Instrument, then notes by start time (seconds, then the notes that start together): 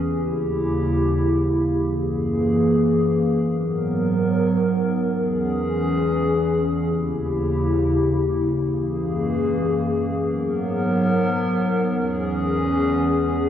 ambient pad
0.03 D#2 C#3 E4 G4
1.72 F#2 E3 A#3 G#4
3.41 G#2 F#3 B3 A#4
5.10 E2 E3 C#4 G#4
6.79 D#2 C#3 E4 G4
8.48 F#2 E3 A#3 G#4
10.17 G#2 F#3 B3 A#4
11.86 E2 E3 C#4 G#4